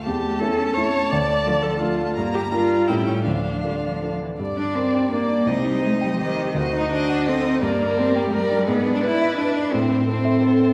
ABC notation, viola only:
X:1
M:3/4
L:1/8
Q:1/4=169
K:Dm
V:1 name="Viola"
G2 A2 ^c2 | d3 A F2 | z G F2 E ^C | D4- D z |
[K:Gm] D6 | E4 G2 | ^F2 F2 A2 | B2 G2 B2 |
[K:Am] ^G2 B4 | E2 E2 A2 |]